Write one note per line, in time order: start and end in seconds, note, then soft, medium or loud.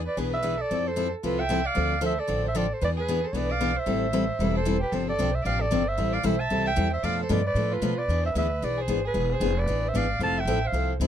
0.06 0.19 B4 medium
0.06 0.21 D5 medium
0.17 0.59 B1 medium
0.17 0.36 E3 medium
0.17 0.36 B3 medium
0.17 0.36 D4 medium
0.17 0.30 G#4 medium
0.17 0.36 G#4 medium
0.17 0.33 B4 medium
0.31 0.59 B4 medium
0.31 0.63 E5 medium
0.43 0.53 E3 medium
0.43 0.54 B3 medium
0.43 0.54 D4 medium
0.43 0.54 G#4 medium
0.57 0.84 A4 medium
0.62 0.89 D5 medium
0.71 1.13 F2 medium
0.71 0.89 F3 medium
0.71 0.89 C4 medium
0.71 0.89 E4 medium
0.71 0.89 A4 medium
0.84 1.11 A4 medium
0.84 1.13 C5 medium
0.96 1.07 F3 medium
0.96 1.07 C4 medium
0.96 1.07 E4 medium
0.96 1.07 A4 loud
1.23 1.66 C2 medium
1.23 1.41 F3 medium
1.23 1.42 C4 medium
1.23 1.42 E4 medium
1.23 1.40 F4 medium
1.23 1.42 A4 medium
1.23 1.42 B4 medium
1.38 1.67 E5 medium
1.38 1.68 G5 medium
1.49 1.60 F3 medium
1.49 1.60 C4 medium
1.49 1.60 E4 medium
1.49 1.60 A4 medium
1.66 2.03 D5 medium
1.66 2.03 F5 loud
1.75 2.19 D2 medium
1.75 1.94 D3 medium
1.75 1.94 F3 medium
1.75 1.94 C4 medium
1.75 1.94 D4 medium
1.75 1.94 A4 medium
2.01 2.12 D3 medium
2.01 2.12 F3 medium
2.01 2.12 C4 medium
2.01 2.12 D4 medium
2.01 2.12 A4 medium
2.01 2.20 C5 medium
2.06 2.22 E5 medium
2.19 2.44 A4 medium
2.19 2.45 D5 medium
2.27 2.71 A1 medium
2.27 2.46 D3 medium
2.27 2.47 F3 medium
2.27 2.47 C4 medium
2.27 2.47 D4 medium
2.27 2.47 A4 medium
2.44 2.56 C5 medium
2.48 2.59 E5 medium
2.55 2.65 D3 medium
2.55 2.65 F3 medium
2.55 2.66 C4 medium
2.55 2.66 D4 medium
2.55 2.70 A4 medium
2.55 2.66 A4 medium
2.55 2.75 D5 medium
2.70 2.81 A4 medium
2.70 2.83 C5 medium
2.81 3.24 E2 medium
2.81 3.00 E3 medium
2.81 3.00 B3 medium
2.81 3.00 D4 medium
2.81 3.00 G#4 medium
2.81 2.88 B4 medium
2.81 2.91 D5 medium
2.97 3.25 G#4 medium
2.97 3.29 B4 medium
3.08 3.18 E3 medium
3.08 3.19 B3 medium
3.08 3.19 D4 medium
3.08 3.19 G#4 medium
3.24 3.32 A4 medium
3.24 3.34 C5 medium
3.32 3.76 B1 medium
3.32 3.53 E3 medium
3.32 3.53 B3 medium
3.32 3.53 D4 medium
3.32 3.53 G#4 medium
3.32 3.35 A4 medium
3.32 3.51 B4 medium
3.32 3.38 C#5 medium
3.37 3.53 D5 medium
3.49 3.77 D5 medium
3.49 3.81 F5 medium
3.61 3.71 E3 medium
3.61 3.71 B3 medium
3.61 3.71 D4 medium
3.61 3.71 G#4 medium
3.76 4.53 C5 medium
3.76 4.57 E5 medium
3.86 4.29 A1 medium
3.86 4.05 E3 medium
3.86 4.05 G3 medium
3.86 4.05 C4 medium
3.86 4.05 E4 medium
3.86 4.05 A4 medium
4.13 4.24 E3 medium
4.13 4.24 G3 medium
4.13 4.24 C4 medium
4.13 4.24 E4 medium
4.13 4.24 A4 medium
4.39 4.81 E1 medium
4.39 4.58 E3 medium
4.39 4.58 G3 medium
4.39 4.59 C4 medium
4.39 4.58 E4 medium
4.39 4.59 A4 medium
4.54 4.79 A4 medium
4.54 4.81 C5 medium
4.65 4.76 E3 medium
4.65 4.76 G3 medium
4.65 4.76 C4 medium
4.65 4.76 E4 medium
4.65 4.77 A4 medium
4.80 4.93 G4 medium
4.80 4.96 B4 medium
4.92 5.18 G1 medium
4.92 5.11 C3 medium
4.92 5.11 F3 medium
4.92 5.11 C4 medium
4.92 5.11 D4 medium
4.92 5.11 G4 medium
4.92 5.05 A4 medium
4.92 5.09 C5 medium
5.06 5.33 A4 medium
5.06 5.37 D5 medium
5.19 5.44 B1 medium
5.19 5.29 C3 medium
5.19 5.29 F3 medium
5.19 5.30 C4 medium
5.19 5.30 D4 medium
5.19 5.30 G4 loud
5.32 5.43 C5 medium
5.32 5.46 E5 medium
5.44 5.71 A1 medium
5.44 5.64 C3 medium
5.44 5.64 F3 medium
5.44 5.64 C4 medium
5.44 5.64 D4 medium
5.44 5.64 G4 medium
5.44 5.60 D5 medium
5.44 5.63 F5 medium
5.59 5.87 A4 medium
5.59 5.90 D5 medium
5.71 5.97 G1 medium
5.71 5.82 C3 medium
5.71 5.82 F3 medium
5.71 5.82 C4 medium
5.71 5.82 D4 medium
5.71 5.82 G4 medium
5.86 6.14 C5 medium
5.86 6.16 E5 loud
5.98 6.23 A1 medium
5.98 6.16 E3 medium
5.98 6.16 G3 medium
5.98 6.17 C4 medium
5.98 6.17 E4 medium
5.98 6.17 A4 medium
6.13 6.25 D5 medium
6.13 6.28 F5 medium
6.23 6.50 B1 medium
6.23 6.34 E3 medium
6.23 6.35 G3 medium
6.23 6.35 C4 medium
6.23 6.35 E4 medium
6.23 6.35 A4 medium
6.23 6.41 C5 medium
6.23 6.42 E5 medium
6.40 6.64 E5 medium
6.40 6.66 A5 loud
6.50 6.77 C2 medium
6.50 6.69 E3 medium
6.50 6.69 G3 medium
6.50 6.69 C4 medium
6.50 6.69 E4 medium
6.50 6.70 A4 medium
6.65 6.90 E5 medium
6.65 6.91 G5 medium
6.76 7.03 E2 medium
6.76 6.87 E3 medium
6.76 6.87 G3 medium
6.76 6.87 C4 medium
6.76 6.87 E4 medium
6.76 6.87 A4 medium
6.92 7.04 C5 medium
6.92 7.07 E5 medium
7.03 7.29 F2 medium
7.03 7.22 B2 medium
7.03 7.22 F3 medium
7.03 7.23 A3 medium
7.03 7.22 D4 medium
7.03 7.22 A4 medium
7.03 7.18 D5 medium
7.03 7.20 F5 loud
7.21 7.32 A4 medium
7.21 7.34 C5 medium
7.29 7.54 G2 medium
7.29 7.40 B2 medium
7.29 7.40 F3 medium
7.29 7.40 A3 medium
7.29 7.41 D4 medium
7.29 7.40 A4 loud
7.29 7.45 B4 medium
7.29 7.47 D5 medium
7.45 7.73 B4 medium
7.45 7.75 D5 medium
7.55 7.81 A2 medium
7.55 7.74 B2 medium
7.55 7.75 F3 medium
7.55 7.75 A3 medium
7.55 7.75 D4 medium
7.55 7.75 A4 medium
7.71 7.99 F4 medium
7.71 8.00 B4 medium
7.82 7.93 B2 medium
7.82 8.08 B2 medium
7.82 7.93 F3 medium
7.82 7.93 A3 medium
7.82 7.93 D4 medium
7.82 7.93 A4 medium
7.98 8.22 B4 medium
7.98 8.25 D5 medium
8.08 8.35 E2 medium
8.08 8.28 E3 medium
8.08 8.28 B3 medium
8.08 8.28 D4 medium
8.08 8.28 G#4 medium
8.23 8.32 C5 medium
8.23 8.36 E5 medium
8.33 8.61 D2 medium
8.33 8.46 E3 medium
8.33 8.46 B3 medium
8.33 8.47 D4 medium
8.33 8.47 G#4 medium
8.33 8.61 B4 medium
8.38 8.66 E5 medium
8.61 8.87 B1 medium
8.61 8.81 E3 medium
8.61 8.81 B3 medium
8.61 8.81 D4 medium
8.61 8.81 G#4 medium
8.61 8.79 B4 medium
8.61 8.83 D5 medium
8.78 9.04 G#4 medium
8.78 9.06 C5 medium
8.88 9.13 G#1 medium
8.88 8.99 E3 medium
8.88 8.99 B3 medium
8.88 8.99 D4 medium
8.88 8.99 G#4 medium
9.04 9.31 G#4 medium
9.04 9.34 B4 medium
9.14 9.40 E1 medium
9.14 9.33 E3 medium
9.14 9.33 B3 medium
9.14 9.33 D4 medium
9.14 9.33 G#4 medium
9.31 9.59 G#4 medium
9.31 9.60 C5 medium
9.40 9.66 F1 medium
9.40 9.52 E3 medium
9.40 9.52 B3 medium
9.40 9.52 D4 medium
9.40 9.52 G#4 medium
9.58 9.88 B4 medium
9.58 9.90 D5 medium
9.67 9.93 A1 medium
9.67 9.86 E3 medium
9.67 9.86 B3 medium
9.67 9.87 D4 medium
9.67 9.87 G#4 medium
9.87 9.97 C5 medium
9.87 9.99 E5 medium
9.94 10.19 G#1 medium
9.94 10.05 E3 medium
9.94 10.05 B3 medium
9.94 10.05 D4 medium
9.94 10.05 G#4 loud
9.94 10.22 D5 medium
9.94 10.23 F5 medium
10.19 10.45 F1 medium
10.19 10.39 F3 medium
10.19 10.39 C4 medium
10.19 10.39 E4 medium
10.19 10.39 A4 medium
10.19 10.39 F5 medium
10.19 10.42 A5 medium
10.38 10.66 E5 medium
10.38 10.69 G5 medium
10.45 10.72 A1 medium
10.45 10.58 F3 medium
10.45 10.58 C4 medium
10.45 10.58 E4 medium
10.45 10.58 A4 loud
10.64 10.90 C5 medium
10.64 10.91 F5 medium
10.72 10.99 C2 medium
10.72 10.92 F3 medium
10.72 10.92 C4 medium
10.72 10.93 E4 medium
10.72 10.93 A4 medium
11.00 11.07 D2 medium
11.00 11.07 F3 medium
11.00 11.07 C4 medium
11.00 11.07 E4 medium
11.00 11.07 A4 loud